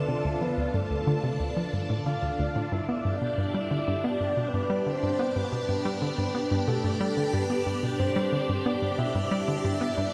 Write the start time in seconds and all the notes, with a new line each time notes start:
Already playing: D3 D4 F4 A4 A5
0.08 C3 D5
0.25 D2
0.41 F3 B4
0.58 D2
0.74 G2 A4
0.91 D2
1.07 D3
1.23 C3
1.40 D2
1.57 F3
1.73 G2
1.90 A2
2.06 D3 F5
2.23 D2
2.39 D2
2.56 A2
2.72 G2 E5
2.88 B3 D5
2.93 G4
3.05 G2
3.16 D5
3.22 B2
3.38 G2
3.54 G3
3.60 E5
3.71 D3
3.88 G2
4.04 B3 D5
4.21 G2
4.37 B2
4.48 B4
4.54 G2
4.70 G3
4.86 D3
4.92 C5
5.03 G2
5.19 B3
5.36 G2 B4
5.52 B2
5.69 G2
5.85 G3
6.02 D3
6.18 G2
6.35 B3
6.51 G2
6.68 B2 A4
6.84 G2
7.01 G3
7.17 D3
7.33 G2 B4
7.50 B3
7.66 G2
7.83 B2
7.99 G2 C5
8.16 G3
8.33 D3
8.49 G2
8.65 B3 D5
8.82 G2
8.98 B2 E5
9.15 G2
9.31 G3
9.48 D3
9.64 G2
9.81 B3
9.98 G2